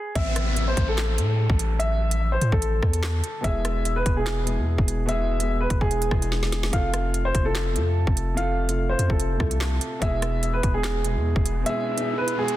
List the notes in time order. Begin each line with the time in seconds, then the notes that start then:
Already playing: G#4
0.15 A1 E5, kick, closed hi-hat, downlifter
0.36 cross-stick, closed hi-hat
0.57 closed hi-hat
0.68 C5
0.77 A1, kick, closed hi-hat
0.88 A4
0.98 snare, clap, closed hi-hat
1.18 A2, closed hi-hat
1.50 A1, kick
1.59 closed hi-hat
1.79 E5, closed hi-hat
2.11 closed hi-hat
2.32 C5
2.41 A2, closed hi-hat
2.52 A1 A4, kick
2.62 closed hi-hat
2.83 E2, kick, cross-stick
2.93 closed hi-hat
3.03 snare, clap
3.24 closed hi-hat
3.41 E1 B2 G#3 E4 E5, kick, closed hi-hat
3.46 G#4
3.65 cross-stick, closed hi-hat
3.85 closed hi-hat
3.96 B4
4.06 E1, kick, closed hi-hat
4.14 B2 G#3 E4 G#4
4.20 G#4
4.26 snare, clap, closed hi-hat
4.44 B2 G#3 E4, closed hi-hat
4.49 G#4
4.58 E2
4.78 E1, kick
4.88 closed hi-hat
5.06 B2 G#3 E4 E5, closed hi-hat
5.11 G#4
5.38 B2 G#3 E4, closed hi-hat
5.43 G#4
5.61 B4
5.70 E1, kick, closed hi-hat
5.78 E1 B2 G#3 E4 G#4, kick
5.83 G#4
5.91 closed hi-hat
6.02 closed hi-hat
6.08 E1 B2 G#3 E4, kick, cross-stick
6.14 G#4
6.22 closed hi-hat
6.32 snare
6.43 snare
6.52 snare, closed hi-hat
6.63 snare
6.70 F1 C3 A3 F4 F5, kick, closed hi-hat
6.76 A4
6.94 cross-stick, closed hi-hat
7.14 closed hi-hat
7.25 C5
7.35 F1, kick, closed hi-hat
7.43 C3 A3 F4 A4
7.48 A4
7.55 snare, clap, closed hi-hat
7.73 F2 C3 A3 F4, closed hi-hat
7.78 A4
8.07 F1, kick
8.17 closed hi-hat
8.34 C3 A3 F4 F5, closed hi-hat
8.40 A4
8.66 C3 A3 F4, closed hi-hat
8.71 A4
8.89 C5
8.99 F2, closed hi-hat
9.07 F1 C3 A3 F4, kick
9.11 A4
9.20 closed hi-hat
9.38 C2 C3 A3 F4, kick, cross-stick
9.43 A4
9.51 closed hi-hat
9.61 snare, clap
9.81 closed hi-hat
10.00 E1 B2 G#3 E4 E5, kick, closed hi-hat, riser
10.05 G#4
10.22 cross-stick, closed hi-hat
10.43 closed hi-hat
10.53 B4
10.63 E1, kick, closed hi-hat
10.72 B2 G#3 E4 G#4
10.77 G#4
10.84 snare, clap, closed hi-hat
11.02 B2 G#3 E4, closed hi-hat
11.08 G#4
11.15 E2
11.36 E1, kick
11.46 closed hi-hat
11.64 B2 G#3 E4 E5, closed hi-hat
11.69 G#4
11.96 B2 G#3 E4, closed hi-hat
12.01 G#4
12.18 B4
12.28 closed hi-hat
12.36 B2 G#3 E4 G#4
12.41 G#4
12.48 closed hi-hat